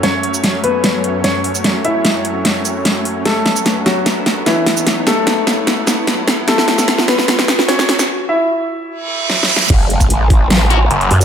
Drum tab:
CC |------------------------------------------------|------------------------------------------------|------------------------------------------------|------------------------------------------------|
HH |x-----x-----x-----x-----x-----x-----x-----o-----|x-----x-----x-----x-----x-----x-----x-----o-----|x-----x-----x-----x-----x-----x-----x-----o-----|x-----x-----x-----x-----x-----x-----x-----o-----|
SH |---------x-----------------------------------x--|------------------------------x-----------------|---------x-----------------------------------x--|------------------------------x-----------------|
SD |o-----------o-----------o-----------o-----------|o-----------o-----------o-----------o-----------|o-----o-----o-----o-----o-----o-----o-----o-----|o-----o-----o-----o-----o-----o-----o-----o-----|
BD |------------------------------------------------|------------------------------------------------|------------------------------------------------|------------------------------------------------|

CC |------------------------------------------------|------------------------------------------------|x-----------------------------------------------|
HH |x-----x-----x-----x-----x-----x-----x-----o-----|------------------------------------------------|x-----x--x--x-----o-----x-----x-----x--x--o--x--|
SH |---------x-----------------------------------x--|------------------------------------------------|---------x-----------------------------------x--|
SD |o--o--o--o--o--o--o--o--o--o--o--o--o--o--o--o--|------------------------------------o---o---o---|------------------------o-----------------------|
BD |------------------------------------------------|------------------------------------------------|o--------o--------o-----------------------------|